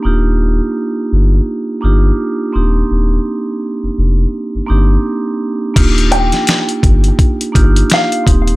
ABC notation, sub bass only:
X:1
M:4/4
L:1/16
Q:"Swing 16ths" 1/4=84
K:Eb
V:1 name="Sub bass" clef=bass
E,,,4 z2 G,,,2 z2 G,,,2 z2 E,,,2 | E,,,2 z3 F,,, F,,,2 z G,,, G,,,2 z4 | E,,,4 z2 G,,,2 z2 G,,,2 z2 E,,,2 |]